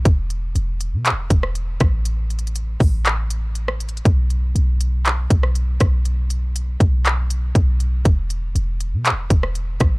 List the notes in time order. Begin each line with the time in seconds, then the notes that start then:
0.05 E1, kick, closed hi-hat
0.30 closed hi-hat
0.55 E1, closed hi-hat
0.81 closed hi-hat
0.93 B2
1.05 clap, closed hi-hat
1.12 E1
1.30 E1, kick, closed hi-hat
1.43 cross-stick
1.55 closed hi-hat
1.80 A1, kick, cross-stick, closed hi-hat
2.05 closed hi-hat
2.30 closed hi-hat
2.39 closed hi-hat
2.47 closed hi-hat
2.56 closed hi-hat
2.80 A1, kick, open hi-hat
3.06 clap, closed hi-hat
3.30 closed hi-hat
3.55 closed hi-hat
3.68 cross-stick
3.80 closed hi-hat
3.89 closed hi-hat
3.97 closed hi-hat
4.05 B1, kick, closed hi-hat
4.30 closed hi-hat
4.55 B1, closed hi-hat
4.81 closed hi-hat
5.06 clap, closed hi-hat
5.30 B1, kick, closed hi-hat
5.43 cross-stick
5.55 closed hi-hat
5.80 B1, kick, cross-stick, closed hi-hat
6.05 closed hi-hat
6.30 closed hi-hat
6.56 closed hi-hat
6.80 B1, kick, closed hi-hat
7.06 clap, closed hi-hat
7.30 closed hi-hat
7.55 B1, kick, closed hi-hat
7.80 closed hi-hat
8.05 E1, kick, closed hi-hat
8.30 closed hi-hat
8.55 E1, closed hi-hat
8.80 closed hi-hat
8.93 B2
9.05 clap, closed hi-hat
9.12 E1
9.30 E1, kick, closed hi-hat
9.43 cross-stick
9.55 closed hi-hat
9.80 A1, kick, cross-stick, closed hi-hat